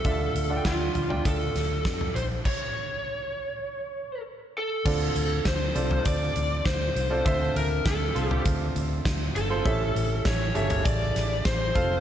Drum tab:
CC |----------------|x---------------|x---------------|----------------|
HH |x-x-x-x-x-x-x-x-|----------------|--x-x-x-x-x-x-x-|x-x-x-x-x-x-x-x-|
SD |----o-----o-o---|----------------|----o-------o---|----o-------o---|
FT |------oo-----o--|----------------|-------o--------|-------o--------|
BD |o---o---o---o---|o---------------|o---o---o---o---|o---o---o---o---|

CC |----------------|
HH |x-x-x-xxx-x-x-x-|
SD |----o-----o-o---|
FT |-------o--------|
BD |o---o---o---o-o-|